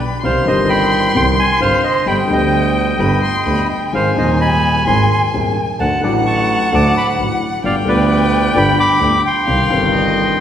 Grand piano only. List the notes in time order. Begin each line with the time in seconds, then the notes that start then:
0.23 C2 C3 D#3 G3 C4 G4
0.44 G1 G2 D#3 G3 C4 G4
1.15 C2 C3 D#3 G3 C4 G4
1.60 G1 G2 D#3 G3 C4 G4
2.06 G1 G2 D3 G3 B3 G4
2.28 D2 D3 G3 B3 G4
2.99 G1 G2 D3 G3 B3 G4
3.46 D2 D3 G3 B3 G4
3.93 G#1 G#2 D#3 G#3 C4 G#4
4.14 D#1 D#2 D#3 G#3 C4
4.18 G#4
4.87 G#1 G#2 D#3 G#3 C4 G#4
5.33 D#1 D#2 D#3 G#3 C4 G#4
5.79 D2 D3 F#3 A3 F#4
6.01 A1 A2 D3 F#3 A3
6.05 F#4
6.72 D2 D3 F#3 A3 F#4
7.19 A1 A2 D3 F#3 A3 F#4
7.64 G1 G2 D3 G3 B3 F4
7.85 D2 D3 G3 B3 F4
8.54 G1 G2 D3 G3 B3 F4
9.00 D2 D3 G3 B3 F4
9.47 C2 C3 D#3 G3 C4 G4
9.69 G1 G2 D#3 G3 C4
9.73 G4